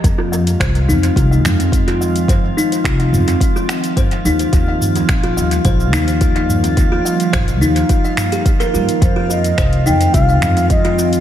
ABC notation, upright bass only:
X:1
M:4/4
L:1/8
Q:1/4=107
K:Fm
V:1 name="Upright bass" clef=bass
F,,2 C,, F,, C,, F,,3- | F,, z C,, F,, z3 E,, | E,,2 B,,, E,, B,,, E,,3- | E,, z B,,, E,, z3 G,, |
F,,2 C,, F,, C,, F,,3 |]